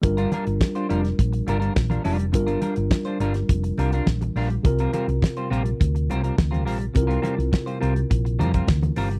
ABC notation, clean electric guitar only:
X:1
M:4/4
L:1/16
Q:1/4=104
K:Gm
V:1 name="Clean electric guitar"
z [G,DFB] [G,DFB] z2 [G,DFc] [G,DFB] z3 [G,DFB] [G,DFB] z [G,DFB] [G,DFB] z | z [G,DFB] [G,DFB] z2 [G,DFc] [G,DFB] z3 [G,DFB] [G,DFB] z2 [G,DFB] z | z [G,CFB] [G,CFB] z2 [G,CFc] [G,CFB] z3 [G,CFB] [G,CFB] z [G,CFB] [G,CFB] z | z [G,CFB] [G,CFB] z2 [G,CFc] [G,CFB] z3 [G,CFB] [G,CFB] z2 [G,CFB] z |]